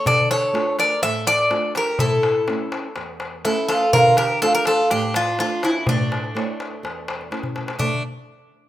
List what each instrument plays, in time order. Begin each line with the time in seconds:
0.05 nylon-string guitar D3, bouzouki A4 D5, darbuka dum
0.31 bouzouki A4 C#5, darbuka tek
0.43 darbuka tek
0.53 nylon-string guitar A3 D4 F4, darbuka tek
0.79 bouzouki A#4 D5, darbuka tek
1.02 nylon-string guitar A2, bouzouki A4 E5, darbuka tek
1.27 bouzouki A4 D5, darbuka tek
1.50 nylon-string guitar A3 D4 F4, darbuka tek
1.75 bouzouki G4 A#4, darbuka tek
1.99 nylon-string guitar A2, bouzouki E4 A4, darbuka dum
2.23 darbuka tek
2.36 darbuka tek
2.47 nylon-string guitar A3 C#4 E4, darbuka tek
2.72 darbuka tek
2.96 nylon-string guitar E2, darbuka tek
3.20 darbuka tek
3.44 nylon-string guitar A3 C#4 E4, bouzouki E4 A4, darbuka tek
3.69 bouzouki F4 A4, darbuka tek
3.93 nylon-string guitar D3, bouzouki F4 A#4, darbuka dum
4.17 bouzouki G4 A#4, darbuka tek
4.30 darbuka tek
4.42 nylon-string guitar A3 D4 F4, bouzouki F4 A4, darbuka tek
4.55 bouzouki G4 A#4
4.65 bouzouki F4 A4, darbuka tek
4.90 nylon-string guitar A2, bouzouki D4 G4, darbuka tek
5.14 bouzouki D4 F4, darbuka tek
5.38 nylon-string guitar A3 D4 F4, bouzouki D4 F4, darbuka tek
5.63 bouzouki C#4 E4, darbuka tek
5.86 nylon-string guitar A2, bouzouki A3 D4, darbuka dum
6.00 darbuka tek
6.12 darbuka tek
6.24 darbuka tek
6.35 nylon-string guitar A3 E4 C#5, darbuka tek
6.60 darbuka tek
6.83 nylon-string guitar E2, darbuka tek
7.08 darbuka tek
7.21 darbuka tek
7.31 nylon-string guitar A3 C#4 E4, darbuka tek
7.43 darbuka dum
7.56 darbuka tek
7.68 darbuka tek
7.79 nylon-string guitar D3 A3, bouzouki A3 D4, darbuka dum